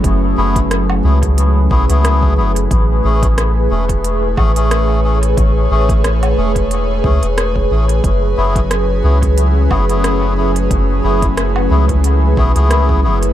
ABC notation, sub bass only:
X:1
M:4/4
L:1/16
Q:"Swing 16ths" 1/4=90
K:F#m
V:1 name="Sub bass" clef=bass
F,,,2 F,,,4 C,,4 B,,, C,,3 F,,,2 | A,,,2 A,,,4 E,,,4 A,,,6 | A,,,2 A,,,4 E,,,4 C,, E,,,2 E,,, A,,,2 | z2 F,,,4 C,,4 F,,,6 |
F,,,2 F,,,4 C,,4 B,,, C,,3 F,,,2 |]